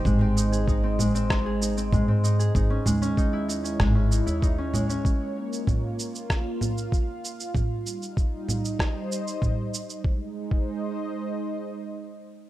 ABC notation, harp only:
X:1
M:4/4
L:1/16
Q:1/4=96
K:Ab
V:1 name="Harp"
A, C E A E C A, C E A E C A, C E A | E D A, D E _F E D A, D E F E D A, D | z16 | z16 |
z16 |]